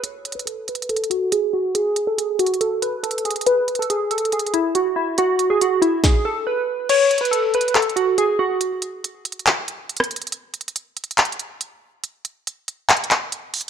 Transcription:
0.04 C#5, closed hi-hat
0.25 closed hi-hat
0.32 B4, closed hi-hat
0.39 closed hi-hat
0.45 A4, closed hi-hat
0.68 B4, closed hi-hat
0.75 closed hi-hat
0.82 closed hi-hat
0.89 A4, closed hi-hat
0.96 closed hi-hat
1.04 closed hi-hat
1.10 F#4, closed hi-hat
1.32 G#4, closed hi-hat
1.53 F#4
1.75 G#4, closed hi-hat
1.96 closed hi-hat
2.07 A4
2.18 G#4, closed hi-hat
2.39 F#4, closed hi-hat
2.46 closed hi-hat
2.54 closed hi-hat
2.61 A4, closed hi-hat
2.82 B4, closed hi-hat
3.03 A4, closed hi-hat
3.11 closed hi-hat
3.18 closed hi-hat
3.25 G#4, closed hi-hat
3.31 closed hi-hat
3.36 closed hi-hat
3.41 closed hi-hat
3.46 B4, closed hi-hat
3.68 closed hi-hat
3.75 closed hi-hat
3.79 A4, closed hi-hat
3.90 G#4, closed hi-hat
4.11 A4, closed hi-hat
4.18 closed hi-hat
4.25 closed hi-hat
4.32 G#4, closed hi-hat
4.39 closed hi-hat
4.47 closed hi-hat
4.54 E4, closed hi-hat
4.75 F#4, closed hi-hat
4.96 E4
5.18 F#4, closed hi-hat
5.39 closed hi-hat
5.50 G#4
5.61 F#4, closed hi-hat
5.82 E4, closed hi-hat
6.04 G#4, kick, snare
6.25 A4
6.47 B4
6.89 C#5, closed hi-hat, crash
7.11 closed hi-hat
7.18 B4, closed hi-hat
7.25 closed hi-hat
7.31 A4, closed hi-hat
7.54 B4, closed hi-hat
7.61 closed hi-hat
7.68 closed hi-hat
7.75 A4, clap, closed hi-hat
7.82 closed hi-hat
7.89 closed hi-hat
7.96 F#4, closed hi-hat
8.18 G#4, closed hi-hat
8.39 F#4
8.61 closed hi-hat
8.82 closed hi-hat
9.04 closed hi-hat
9.25 closed hi-hat
9.32 closed hi-hat
9.39 closed hi-hat
9.47 clap, closed hi-hat
9.68 closed hi-hat
9.89 closed hi-hat
9.97 cross-stick, closed hi-hat
10.04 closed hi-hat
10.11 closed hi-hat
10.16 closed hi-hat
10.22 closed hi-hat
10.27 closed hi-hat
10.32 closed hi-hat
10.54 closed hi-hat
10.61 closed hi-hat
10.68 closed hi-hat
10.76 closed hi-hat
10.97 closed hi-hat
11.04 closed hi-hat
11.11 closed hi-hat
11.18 clap, closed hi-hat
11.25 closed hi-hat
11.32 closed hi-hat
11.39 closed hi-hat
11.61 closed hi-hat
12.04 closed hi-hat
12.25 closed hi-hat
12.47 closed hi-hat
12.68 closed hi-hat
12.89 clap, closed hi-hat
12.97 closed hi-hat
13.04 closed hi-hat
13.11 clap, closed hi-hat
13.32 closed hi-hat
13.54 closed hi-hat, open hi-hat
13.61 closed hi-hat

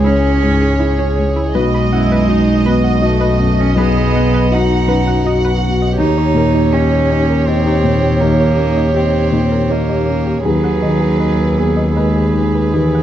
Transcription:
Already playing: C#2 G#2 G#3 G#4
0.04 C#4 E4 C#5
0.43 G#2 C#4
0.62 G#4
0.80 E4 G#4 C#5
0.99 C#4
1.18 G#3
1.36 E4
1.55 B1 G#3 F#4 B4 D#5
1.74 B5
1.92 F#2 E4 F#5
2.12 B4
2.28 D#4 F#4 D#5
2.65 B3 F#4 B4
2.84 F#5
3.02 A3 F#4 D#5
3.21 B4
3.40 F#2
3.58 C#4 D#5
3.77 B1 B3 G#4 B4 D#5
3.97 B5
4.13 B3 F#5
4.34 B4
4.52 D#4 F#4 D#5 F#5
4.87 F#2 B4
5.07 F#5
5.25 F#4 D#5 F#5
5.45 B4
5.62 B3
5.82 D#5
5.98 D#2 D#4 G4 C#5
6.18 C#5
6.34 A#2 A#4
6.54 D#4
6.73 C#4 G4 D#5
7.10 C#4 D#4
7.30 A#4
7.47 C4 G4 D#5
7.66 D#4
7.84 A#2
8.03 G4
8.20 D#2 A#3 D#4
8.40 C#5
8.57 C#4 A#4
8.77 D#4
8.94 C4 G4 D#5
9.32 A#2 D#4
9.52 A#4
9.70 A#3 G4 D#5
9.89 D#4
10.08 C#4
10.26 G4
10.45 D#2 F#3 G#4 B4
10.64 F#5
10.82 D#3 D#5
11.01 G#4
11.19 G#4 B4 D#5
11.56 B3 G#4
11.77 D#5
11.95 G#3 G#4 B4 D#5
12.16 G#4
12.34 D#3
12.55 B4
12.73 D#2 E3 G#4
12.95 F#5

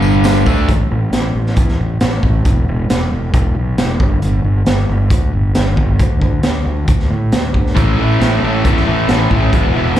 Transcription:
Already playing: G1 G2 D3 G3
0.02 tambourine
0.14 tambourine
0.24 snare, closed hi-hat, tambourine
0.46 D2 D3 A3 D4, kick, tambourine
0.57 tambourine
0.68 A1, kick, closed hi-hat
0.91 A1
1.13 A1, snare, closed hi-hat
1.35 A1
1.46 snare
1.56 E2, kick, closed hi-hat
1.68 snare
1.79 A1
2.01 A1, snare, closed hi-hat
2.23 A1, kick
2.45 E1, kick, closed hi-hat
2.68 E1
2.89 E1, snare, closed hi-hat
3.12 E1
3.34 E1, kick, closed hi-hat
3.55 B1
3.78 E1, snare, closed hi-hat
4.00 G1, kick
4.22 G1, closed hi-hat
4.44 G1
4.66 G1, snare, closed hi-hat
4.89 G1
5.10 D2, kick, closed hi-hat
5.33 G1
5.55 G1, snare, closed hi-hat
5.77 G1, kick
5.99 D2, kick, closed hi-hat
6.21 D2, kick
6.43 D2, snare, closed hi-hat
6.66 D2
6.88 D2, kick, closed hi-hat
6.99 snare
7.11 A2
7.32 D2, snare, closed hi-hat
7.54 D2, kick
7.66 snare
7.74 A1 A2 E3 A3 C#4 E4, kick, closed hi-hat
7.97 A1 A2 E3 A3 C#4 E4
8.20 A1 A2 E3 A3 C#4 E4, snare, closed hi-hat
8.42 A1 A2 E3 A3 C#4 E4
8.64 E2 A2 E3 A3 C#4 E4, kick, closed hi-hat
8.76 snare
8.86 A1 A2 E3 A3 C#4 E4
9.08 A1 A2 E3 A3 C#4 E4, snare, closed hi-hat
9.30 A1 A2 E3 A3 C#4 E4, kick
9.52 E1 E2 B2 E3 G#3 B3 E4, kick, closed hi-hat
9.74 E1 E2 B2 E3 G#3 B3 E4
9.96 E3, snare, closed hi-hat

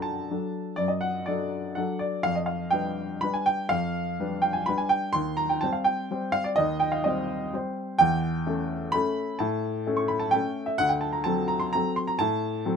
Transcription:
Already playing: F#2 F#3 D4 A4 F#5 G5 A5 A#5
0.02 A5
0.30 F#3 D4 A4
0.76 F#2 D5
0.88 D#5
1.01 F#5
1.26 F#3 D4 A4 D5
1.75 F#3 D4 A4 F#5
1.99 D5
2.23 F2 F5
2.35 D#5
2.46 F5
2.71 G3 D4 B4 G5
3.21 G3 D4 B4 B5
3.34 G#5
3.46 G5
3.69 F2 F5
4.20 G3 D4 B4
4.42 G5
4.53 G#5
4.66 G3 D4 B4 B5
4.78 G#5
4.89 G5
5.13 D#2 C6
5.37 A#5
5.49 G5
5.61 G3 C4 C5 A5
5.73 F5
5.84 G5
6.11 G3 C4 C5
6.32 F5
6.44 D5
6.56 D#2 D#5
6.80 G5
6.92 F5
7.04 G3 C4 C5 D#5
7.54 G3 C4 C5
7.99 E2 G5
8.47 A3 C#4 A4
8.92 A3 C#4 A4 B5
9.39 A2 A5
9.87 A3 C#4 A4
9.97 C#6
10.08 B5
10.20 A5
10.31 A3 C#4 A4 G5
10.66 E5
10.78 D2 F#5
10.89 G5
11.01 A5
11.13 A#5
11.24 F#3 C4 A4 A5
11.48 A#5
11.60 C6
11.73 F#3 C4 A4 A#5
11.96 C6
12.07 A#5
12.19 A2 A5
12.65 F#3 C4 A4

